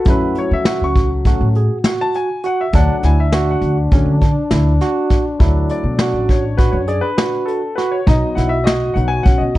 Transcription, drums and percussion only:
0.05 kick loud
0.05 closed hi-hat medium
0.35 closed hi-hat medium
0.65 snare loud
0.65 closed hi-hat medium
0.96 kick medium
0.96 closed hi-hat medium
1.25 kick medium
1.25 closed hi-hat medium
1.55 closed hi-hat medium
1.84 snare loud
1.84 closed hi-hat medium
2.14 closed hi-hat medium
2.43 closed hi-hat medium
2.73 kick loud
2.73 closed hi-hat medium
3.03 snare soft
3.03 closed hi-hat medium
3.32 snare loud
3.32 closed hi-hat medium
3.62 closed hi-hat medium
3.91 kick loud
3.91 closed hi-hat medium
4.21 kick medium
4.21 closed hi-hat medium
4.51 snare loud
4.51 closed hi-hat medium
4.81 snare soft
4.81 closed hi-hat medium
5.10 kick medium
5.10 snare soft
5.10 closed hi-hat medium
5.40 kick loud
5.40 closed hi-hat medium
5.69 closed hi-hat medium
5.99 snare loud
5.99 closed hi-hat medium
6.29 kick medium
6.29 closed hi-hat medium
6.58 kick medium
6.58 closed hi-hat medium
6.88 closed hi-hat medium
7.18 snare loud
7.18 closed hi-hat medium
7.48 closed hi-hat medium
7.78 snare soft
7.78 closed hi-hat medium
8.07 kick loud
8.07 closed hi-hat medium
8.38 snare soft
8.38 closed hi-hat medium
8.67 snare loud
8.67 closed hi-hat medium
8.97 closed hi-hat medium
9.25 kick loud
9.25 closed hi-hat medium
9.55 closed hi-hat medium

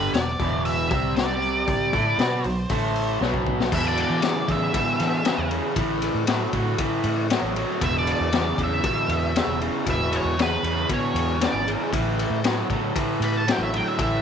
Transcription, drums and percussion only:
0.14 snare loud
0.14 open hi-hat medium
0.39 kick medium
0.39 open hi-hat soft
0.65 open hi-hat medium
0.91 kick loud
0.91 open hi-hat soft
1.16 snare loud
1.16 open hi-hat medium
1.42 open hi-hat soft
1.67 kick medium
1.67 open hi-hat medium
1.93 kick medium
1.93 open hi-hat soft
2.19 snare loud
2.19 open hi-hat medium
2.44 open hi-hat soft
2.69 kick medium
2.69 open hi-hat medium
2.96 open hi-hat soft
3.22 snare medium
3.34 kick medium
3.47 kick medium
3.60 snare medium
3.72 kick loud
3.72 crash loud
3.97 ride medium
4.22 snare loud
4.22 ride medium
4.48 kick medium
4.48 ride medium
4.74 kick medium
4.74 ride medium
5.00 snare soft
5.00 ride medium
5.25 snare loud
5.25 ride medium
5.51 ride medium
5.76 kick loud
5.76 ride medium
6.02 ride medium
6.27 snare loud
6.27 ride medium
6.53 kick medium
6.53 ride medium
6.78 kick loud
6.78 ride medium
7.04 ride medium
7.30 snare loud
7.30 ride medium
7.56 ride medium
7.81 kick loud
7.81 ride medium
8.07 ride medium
8.32 snare loud
8.32 ride medium
8.58 kick medium
8.58 ride medium
8.84 kick loud
8.84 ride medium
9.09 ride medium
9.36 snare loud
9.36 ride medium
9.61 ride medium
9.86 kick medium
9.86 ride medium
10.12 ride medium
10.39 snare loud
10.39 ride medium
10.64 ride medium
10.89 kick loud
10.89 ride medium
11.16 ride medium
11.41 snare medium
11.41 ride medium
11.68 ride medium
11.93 kick medium
11.93 ride medium
12.19 ride medium
12.44 snare loud
12.44 ride medium
12.70 kick medium
12.70 ride medium
12.96 kick loud
12.96 ride medium
13.22 ride medium
13.48 snare loud
13.48 ride medium
13.73 ride medium
13.99 kick loud
13.99 ride medium

